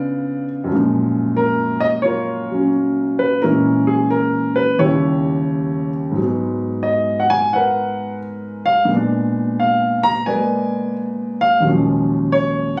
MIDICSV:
0, 0, Header, 1, 2, 480
1, 0, Start_track
1, 0, Key_signature, -6, "minor"
1, 0, Tempo, 684151
1, 490, Time_signature, 4, 2, 24, 8
1, 8980, End_track
2, 0, Start_track
2, 0, Title_t, "Grand piano"
2, 0, Program_c, 0, 0
2, 0, Note_on_c, 0, 49, 59
2, 0, Note_on_c, 0, 59, 51
2, 0, Note_on_c, 0, 62, 57
2, 0, Note_on_c, 0, 65, 62
2, 0, Note_on_c, 0, 71, 56
2, 0, Note_on_c, 0, 74, 85
2, 308, Note_off_c, 0, 74, 0
2, 449, Note_on_c, 0, 42, 58
2, 471, Note_off_c, 0, 71, 0
2, 475, Note_off_c, 0, 49, 0
2, 476, Note_on_c, 0, 53, 55
2, 488, Note_off_c, 0, 59, 0
2, 501, Note_off_c, 0, 62, 0
2, 503, Note_on_c, 0, 56, 49
2, 514, Note_off_c, 0, 65, 0
2, 528, Note_on_c, 0, 46, 61
2, 958, Note_on_c, 0, 70, 87
2, 1262, Note_off_c, 0, 70, 0
2, 1266, Note_on_c, 0, 75, 96
2, 1304, Note_off_c, 0, 75, 0
2, 1418, Note_on_c, 0, 73, 80
2, 1441, Note_on_c, 0, 65, 58
2, 1444, Note_on_c, 0, 70, 57
2, 1758, Note_on_c, 0, 54, 39
2, 1783, Note_on_c, 0, 61, 45
2, 1884, Note_off_c, 0, 73, 0
2, 2238, Note_on_c, 0, 71, 82
2, 2374, Note_off_c, 0, 65, 0
2, 2376, Note_off_c, 0, 70, 0
2, 2385, Note_off_c, 0, 42, 0
2, 2398, Note_on_c, 0, 70, 79
2, 2399, Note_off_c, 0, 53, 0
2, 2400, Note_off_c, 0, 54, 0
2, 2402, Note_off_c, 0, 46, 0
2, 2403, Note_off_c, 0, 56, 0
2, 2403, Note_off_c, 0, 61, 0
2, 2405, Note_off_c, 0, 71, 0
2, 2410, Note_on_c, 0, 64, 53
2, 2412, Note_on_c, 0, 46, 53
2, 2413, Note_on_c, 0, 52, 49
2, 2413, Note_on_c, 0, 56, 50
2, 2413, Note_on_c, 0, 61, 59
2, 2701, Note_off_c, 0, 70, 0
2, 2717, Note_on_c, 0, 68, 82
2, 2868, Note_off_c, 0, 68, 0
2, 2880, Note_on_c, 0, 70, 86
2, 3197, Note_on_c, 0, 71, 91
2, 3214, Note_off_c, 0, 70, 0
2, 3338, Note_off_c, 0, 64, 0
2, 3340, Note_off_c, 0, 61, 0
2, 3356, Note_on_c, 0, 39, 61
2, 3361, Note_on_c, 0, 73, 87
2, 3364, Note_off_c, 0, 71, 0
2, 3365, Note_on_c, 0, 64, 62
2, 3365, Note_on_c, 0, 67, 61
2, 3367, Note_off_c, 0, 46, 0
2, 3368, Note_off_c, 0, 52, 0
2, 3368, Note_off_c, 0, 56, 0
2, 3371, Note_on_c, 0, 49, 52
2, 3378, Note_on_c, 0, 55, 53
2, 3381, Note_off_c, 0, 64, 0
2, 3391, Note_on_c, 0, 64, 65
2, 4136, Note_off_c, 0, 73, 0
2, 4288, Note_on_c, 0, 44, 51
2, 4296, Note_off_c, 0, 67, 0
2, 4318, Note_on_c, 0, 54, 45
2, 4319, Note_off_c, 0, 39, 0
2, 4326, Note_off_c, 0, 49, 0
2, 4330, Note_off_c, 0, 55, 0
2, 4337, Note_off_c, 0, 64, 0
2, 4338, Note_on_c, 0, 56, 43
2, 4364, Note_on_c, 0, 59, 53
2, 4790, Note_on_c, 0, 75, 77
2, 5049, Note_on_c, 0, 78, 69
2, 5061, Note_off_c, 0, 75, 0
2, 5120, Note_off_c, 0, 78, 0
2, 5122, Note_on_c, 0, 80, 97
2, 5284, Note_on_c, 0, 78, 81
2, 5286, Note_off_c, 0, 80, 0
2, 5297, Note_on_c, 0, 70, 57
2, 5300, Note_on_c, 0, 71, 55
2, 5735, Note_off_c, 0, 78, 0
2, 6073, Note_on_c, 0, 77, 91
2, 6210, Note_on_c, 0, 46, 58
2, 6221, Note_off_c, 0, 56, 0
2, 6222, Note_off_c, 0, 70, 0
2, 6224, Note_off_c, 0, 71, 0
2, 6225, Note_off_c, 0, 77, 0
2, 6226, Note_off_c, 0, 44, 0
2, 6231, Note_on_c, 0, 56, 49
2, 6241, Note_off_c, 0, 54, 0
2, 6247, Note_off_c, 0, 59, 0
2, 6258, Note_on_c, 0, 59, 48
2, 6286, Note_on_c, 0, 62, 59
2, 6732, Note_on_c, 0, 77, 85
2, 7040, Note_on_c, 0, 82, 103
2, 7060, Note_off_c, 0, 77, 0
2, 7190, Note_off_c, 0, 82, 0
2, 7194, Note_off_c, 0, 56, 0
2, 7200, Note_on_c, 0, 80, 81
2, 7205, Note_on_c, 0, 56, 49
2, 7210, Note_on_c, 0, 74, 58
2, 7212, Note_on_c, 0, 71, 56
2, 7220, Note_on_c, 0, 58, 52
2, 7655, Note_off_c, 0, 80, 0
2, 8006, Note_on_c, 0, 77, 93
2, 8138, Note_on_c, 0, 39, 50
2, 8141, Note_off_c, 0, 74, 0
2, 8142, Note_off_c, 0, 46, 0
2, 8142, Note_off_c, 0, 71, 0
2, 8152, Note_on_c, 0, 46, 53
2, 8154, Note_off_c, 0, 77, 0
2, 8165, Note_on_c, 0, 54, 53
2, 8166, Note_off_c, 0, 56, 0
2, 8174, Note_off_c, 0, 58, 0
2, 8174, Note_off_c, 0, 59, 0
2, 8185, Note_on_c, 0, 56, 55
2, 8188, Note_off_c, 0, 62, 0
2, 8196, Note_on_c, 0, 61, 50
2, 8215, Note_on_c, 0, 53, 58
2, 8646, Note_on_c, 0, 73, 97
2, 8948, Note_off_c, 0, 73, 0
2, 8980, Note_off_c, 0, 39, 0
2, 8980, Note_off_c, 0, 46, 0
2, 8980, Note_off_c, 0, 53, 0
2, 8980, Note_off_c, 0, 54, 0
2, 8980, Note_off_c, 0, 56, 0
2, 8980, Note_off_c, 0, 61, 0
2, 8980, End_track
0, 0, End_of_file